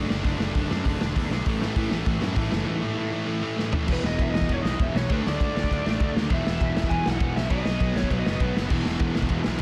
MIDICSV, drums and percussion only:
0, 0, Header, 1, 2, 480
1, 0, Start_track
1, 0, Tempo, 301963
1, 394, Time_signature, 4, 2, 24, 8
1, 15290, End_track
2, 0, Start_track
2, 0, Title_t, "Drums"
2, 164, Note_on_c, 9, 38, 116
2, 323, Note_off_c, 9, 38, 0
2, 384, Note_on_c, 9, 46, 57
2, 390, Note_on_c, 9, 36, 118
2, 543, Note_off_c, 9, 46, 0
2, 549, Note_off_c, 9, 36, 0
2, 639, Note_on_c, 9, 38, 106
2, 798, Note_off_c, 9, 38, 0
2, 869, Note_on_c, 9, 46, 58
2, 876, Note_on_c, 9, 36, 110
2, 1028, Note_off_c, 9, 46, 0
2, 1035, Note_off_c, 9, 36, 0
2, 1126, Note_on_c, 9, 38, 106
2, 1285, Note_off_c, 9, 38, 0
2, 1353, Note_on_c, 9, 46, 65
2, 1358, Note_on_c, 9, 36, 108
2, 1512, Note_off_c, 9, 46, 0
2, 1517, Note_off_c, 9, 36, 0
2, 1606, Note_on_c, 9, 38, 111
2, 1765, Note_off_c, 9, 38, 0
2, 1844, Note_on_c, 9, 36, 111
2, 1845, Note_on_c, 9, 46, 65
2, 2003, Note_off_c, 9, 36, 0
2, 2004, Note_off_c, 9, 46, 0
2, 2086, Note_on_c, 9, 38, 116
2, 2245, Note_off_c, 9, 38, 0
2, 2313, Note_on_c, 9, 46, 66
2, 2323, Note_on_c, 9, 36, 118
2, 2472, Note_off_c, 9, 46, 0
2, 2482, Note_off_c, 9, 36, 0
2, 2574, Note_on_c, 9, 38, 115
2, 2733, Note_off_c, 9, 38, 0
2, 2796, Note_on_c, 9, 46, 60
2, 2798, Note_on_c, 9, 36, 118
2, 2955, Note_off_c, 9, 46, 0
2, 2957, Note_off_c, 9, 36, 0
2, 3040, Note_on_c, 9, 38, 112
2, 3199, Note_off_c, 9, 38, 0
2, 3266, Note_on_c, 9, 46, 54
2, 3280, Note_on_c, 9, 36, 114
2, 3425, Note_off_c, 9, 46, 0
2, 3439, Note_off_c, 9, 36, 0
2, 3529, Note_on_c, 9, 38, 114
2, 3688, Note_off_c, 9, 38, 0
2, 3747, Note_on_c, 9, 46, 56
2, 3757, Note_on_c, 9, 36, 114
2, 3905, Note_off_c, 9, 46, 0
2, 3916, Note_off_c, 9, 36, 0
2, 4006, Note_on_c, 9, 38, 112
2, 4165, Note_off_c, 9, 38, 0
2, 5703, Note_on_c, 9, 38, 63
2, 5861, Note_off_c, 9, 38, 0
2, 5925, Note_on_c, 9, 43, 91
2, 6084, Note_off_c, 9, 43, 0
2, 6166, Note_on_c, 9, 49, 127
2, 6173, Note_on_c, 9, 36, 118
2, 6325, Note_off_c, 9, 49, 0
2, 6332, Note_off_c, 9, 36, 0
2, 6422, Note_on_c, 9, 38, 118
2, 6581, Note_off_c, 9, 38, 0
2, 6659, Note_on_c, 9, 36, 119
2, 6660, Note_on_c, 9, 51, 83
2, 6818, Note_off_c, 9, 36, 0
2, 6819, Note_off_c, 9, 51, 0
2, 6917, Note_on_c, 9, 38, 113
2, 7018, Note_on_c, 9, 36, 95
2, 7076, Note_off_c, 9, 38, 0
2, 7140, Note_off_c, 9, 36, 0
2, 7140, Note_on_c, 9, 36, 101
2, 7140, Note_on_c, 9, 51, 73
2, 7298, Note_off_c, 9, 36, 0
2, 7299, Note_off_c, 9, 51, 0
2, 7398, Note_on_c, 9, 38, 117
2, 7557, Note_off_c, 9, 38, 0
2, 7619, Note_on_c, 9, 51, 76
2, 7624, Note_on_c, 9, 36, 116
2, 7778, Note_off_c, 9, 51, 0
2, 7783, Note_off_c, 9, 36, 0
2, 7882, Note_on_c, 9, 38, 124
2, 8041, Note_off_c, 9, 38, 0
2, 8099, Note_on_c, 9, 51, 81
2, 8105, Note_on_c, 9, 36, 122
2, 8258, Note_off_c, 9, 51, 0
2, 8264, Note_off_c, 9, 36, 0
2, 8370, Note_on_c, 9, 38, 107
2, 8529, Note_off_c, 9, 38, 0
2, 8591, Note_on_c, 9, 36, 114
2, 8597, Note_on_c, 9, 51, 79
2, 8749, Note_off_c, 9, 36, 0
2, 8756, Note_off_c, 9, 51, 0
2, 8850, Note_on_c, 9, 38, 114
2, 8956, Note_on_c, 9, 36, 94
2, 9009, Note_off_c, 9, 38, 0
2, 9076, Note_off_c, 9, 36, 0
2, 9076, Note_on_c, 9, 36, 94
2, 9097, Note_on_c, 9, 51, 78
2, 9235, Note_off_c, 9, 36, 0
2, 9256, Note_off_c, 9, 51, 0
2, 9322, Note_on_c, 9, 38, 120
2, 9481, Note_off_c, 9, 38, 0
2, 9540, Note_on_c, 9, 51, 83
2, 9545, Note_on_c, 9, 36, 123
2, 9699, Note_off_c, 9, 51, 0
2, 9704, Note_off_c, 9, 36, 0
2, 9800, Note_on_c, 9, 38, 117
2, 9959, Note_off_c, 9, 38, 0
2, 10013, Note_on_c, 9, 51, 84
2, 10019, Note_on_c, 9, 36, 124
2, 10172, Note_off_c, 9, 51, 0
2, 10178, Note_off_c, 9, 36, 0
2, 10280, Note_on_c, 9, 38, 114
2, 10439, Note_off_c, 9, 38, 0
2, 10503, Note_on_c, 9, 36, 118
2, 10508, Note_on_c, 9, 51, 81
2, 10662, Note_off_c, 9, 36, 0
2, 10667, Note_off_c, 9, 51, 0
2, 10756, Note_on_c, 9, 38, 118
2, 10862, Note_on_c, 9, 36, 91
2, 10915, Note_off_c, 9, 38, 0
2, 10977, Note_off_c, 9, 36, 0
2, 10977, Note_on_c, 9, 36, 96
2, 10981, Note_on_c, 9, 51, 81
2, 11136, Note_off_c, 9, 36, 0
2, 11140, Note_off_c, 9, 51, 0
2, 11221, Note_on_c, 9, 38, 117
2, 11380, Note_off_c, 9, 38, 0
2, 11452, Note_on_c, 9, 51, 80
2, 11453, Note_on_c, 9, 36, 123
2, 11611, Note_off_c, 9, 51, 0
2, 11612, Note_off_c, 9, 36, 0
2, 11717, Note_on_c, 9, 38, 118
2, 11876, Note_off_c, 9, 38, 0
2, 11928, Note_on_c, 9, 51, 76
2, 11929, Note_on_c, 9, 36, 121
2, 12087, Note_off_c, 9, 51, 0
2, 12088, Note_off_c, 9, 36, 0
2, 12169, Note_on_c, 9, 38, 111
2, 12327, Note_off_c, 9, 38, 0
2, 12405, Note_on_c, 9, 36, 113
2, 12409, Note_on_c, 9, 51, 75
2, 12564, Note_off_c, 9, 36, 0
2, 12568, Note_off_c, 9, 51, 0
2, 12658, Note_on_c, 9, 38, 118
2, 12765, Note_on_c, 9, 36, 90
2, 12817, Note_off_c, 9, 38, 0
2, 12883, Note_off_c, 9, 36, 0
2, 12883, Note_on_c, 9, 36, 103
2, 12889, Note_on_c, 9, 51, 79
2, 13042, Note_off_c, 9, 36, 0
2, 13048, Note_off_c, 9, 51, 0
2, 13136, Note_on_c, 9, 38, 123
2, 13295, Note_off_c, 9, 38, 0
2, 13354, Note_on_c, 9, 51, 84
2, 13358, Note_on_c, 9, 36, 118
2, 13513, Note_off_c, 9, 51, 0
2, 13517, Note_off_c, 9, 36, 0
2, 13617, Note_on_c, 9, 38, 126
2, 13776, Note_off_c, 9, 38, 0
2, 13830, Note_on_c, 9, 57, 111
2, 13836, Note_on_c, 9, 36, 122
2, 13989, Note_off_c, 9, 57, 0
2, 13995, Note_off_c, 9, 36, 0
2, 14075, Note_on_c, 9, 38, 114
2, 14234, Note_off_c, 9, 38, 0
2, 14297, Note_on_c, 9, 51, 85
2, 14309, Note_on_c, 9, 36, 118
2, 14456, Note_off_c, 9, 51, 0
2, 14468, Note_off_c, 9, 36, 0
2, 14551, Note_on_c, 9, 38, 115
2, 14664, Note_on_c, 9, 36, 92
2, 14710, Note_off_c, 9, 38, 0
2, 14762, Note_on_c, 9, 51, 79
2, 14782, Note_off_c, 9, 36, 0
2, 14782, Note_on_c, 9, 36, 96
2, 14921, Note_off_c, 9, 51, 0
2, 14941, Note_off_c, 9, 36, 0
2, 15010, Note_on_c, 9, 38, 123
2, 15169, Note_off_c, 9, 38, 0
2, 15235, Note_on_c, 9, 51, 80
2, 15290, Note_off_c, 9, 51, 0
2, 15290, End_track
0, 0, End_of_file